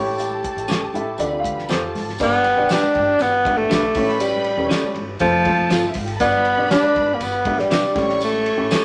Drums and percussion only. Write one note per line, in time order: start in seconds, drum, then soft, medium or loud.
0.18 closed hi-hat medium
0.18 tambourine medium
0.18 muted conga soft
0.30 high conga soft
0.43 kick medium
0.43 closed hi-hat medium
0.43 muted conga soft
0.58 closed hi-hat medium
0.68 snare loud
0.68 closed hi-hat medium
0.68 tambourine loud
0.68 muted conga soft
0.68 high conga medium
0.82 high conga medium
0.94 closed hi-hat medium
0.94 muted conga soft
0.94 high conga medium
0.94 low conga medium
1.18 closed hi-hat medium
1.18 tambourine medium
1.18 muted conga soft
1.18 low conga medium
1.44 kick medium
1.44 closed hi-hat medium
1.44 high conga medium
1.59 snare soft
1.69 snare loud
1.69 closed hi-hat medium
1.69 tambourine loud
1.69 muted conga soft
1.81 low conga medium
1.95 snare soft
1.95 open hi-hat soft
1.95 muted conga soft
1.95 high conga medium
2.09 snare soft
2.18 kick loud
2.18 crash loud
2.18 tambourine medium
2.33 high conga soft
2.44 ride medium
2.44 muted conga soft
2.69 snare loud
2.69 ride medium
2.69 tambourine loud
2.69 high conga medium
2.83 high conga medium
2.95 kick medium
2.95 ride soft
2.95 high conga medium
2.95 low conga medium
3.19 ride medium
3.19 tambourine medium
3.19 muted conga soft
3.19 low conga medium
3.45 kick loud
3.45 ride medium
3.45 high conga medium
3.70 snare loud
3.70 ride medium
3.70 tambourine loud
3.70 muted conga soft
3.83 low conga medium
3.95 kick loud
3.95 snare soft
3.95 open hi-hat medium
3.95 ride medium
3.95 high conga medium
4.09 snare soft
4.20 hi-hat pedal medium
4.20 ride medium
4.20 tambourine medium
4.20 muted conga soft
4.33 high conga soft
4.44 ride medium
4.70 snare loud
4.70 ride medium
4.70 tambourine loud
4.70 muted conga soft
4.70 high conga medium
4.84 high conga medium
4.96 ride medium
4.96 muted conga soft
4.96 high conga medium
4.96 low conga medium
5.19 kick loud
5.19 ride medium
5.19 tambourine medium
5.19 muted conga soft
5.19 low conga medium
5.45 kick loud
5.45 ride medium
5.45 muted conga soft
5.45 high conga medium
5.70 snare loud
5.70 ride medium
5.70 tambourine loud
5.83 low conga medium
5.94 kick medium
5.94 snare soft
5.94 open hi-hat medium
5.94 ride medium
5.94 muted conga soft
5.94 high conga medium
6.08 ride medium
6.20 kick loud
6.20 hi-hat pedal medium
6.20 ride medium
6.20 tambourine medium
6.32 ride soft
6.32 high conga soft
6.45 ride medium
6.69 snare loud
6.69 ride medium
6.69 tambourine loud
6.69 muted conga soft
6.69 high conga medium
6.83 high conga medium
6.95 kick medium
6.95 ride soft
6.95 high conga medium
6.95 low conga medium
7.20 ride medium
7.20 tambourine medium
7.20 muted conga soft
7.20 low conga medium
7.45 kick loud
7.45 ride medium
7.45 muted conga soft
7.45 high conga medium
7.59 snare soft
7.71 snare loud
7.71 ride medium
7.71 tambourine loud
7.71 muted conga soft
7.83 low conga medium
7.96 kick loud
7.96 snare soft
7.96 ride medium
7.96 muted conga soft
7.96 high conga medium
8.09 snare soft
8.21 ride medium
8.21 tambourine medium
8.21 muted conga soft
8.33 high conga soft
8.45 ride medium
8.45 muted conga soft
8.71 snare loud
8.71 ride medium
8.71 tambourine loud
8.71 high conga medium